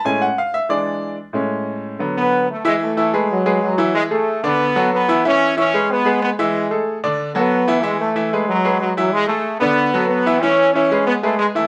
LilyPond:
<<
  \new Staff \with { instrumentName = "Upright piano" } { \time 4/4 \key e \mixolydian \tempo 4 = 185 <a, gis cis' gis''>8 fis''8 f''8 e''8 <e gis d' d''>4. r8 | <a, gis cis'>2 <d fis b>4. r8 | <e e' e''>4 <e e' e''>8 <gis gis' b'>4 <gis gis' b'>4 <e e' e''>8~ | <e e' e''>8 <a gis' a'>4 <d d' d''>4 <fis fis' a'>4 <e e' e''>8 |
<e e' e''>4 <e e' e''>8 <gis gis' b'>4 <gis gis' b'>4 <e e' e''>8~ | <e e' e''>8 <a gis' a'>4 <d d' d''>4 <fis fis' a'>4 <e e' e''>8 | <e e' e''>4 <e e' e''>8 <gis gis' b'>4 <gis gis' b'>4 <e e' e''>8~ | <e e' e''>8 <a gis' a'>4 <d d' d''>4 <fis fis' a'>4 <e e' e''>8 |
<e e' e''>4 <e e' e''>8 <gis gis' b'>4 <gis gis' b'>4 <e e' e''>8 | }
  \new Staff \with { instrumentName = "Trombone section" } { \time 4/4 \key e \mixolydian r1 | r2 r8 b4 a8 | gis8 a4. fis4 fis4 | gis8 a4 b4. b4 |
cis'4 cis'4 b4 b8 gis8~ | gis4 r4. b4. | gis8 a4. fis4 fis8 fis8 | gis8 a4 b4. b4 |
cis'4 cis'4 b8 a8 gis8 a8 | }
>>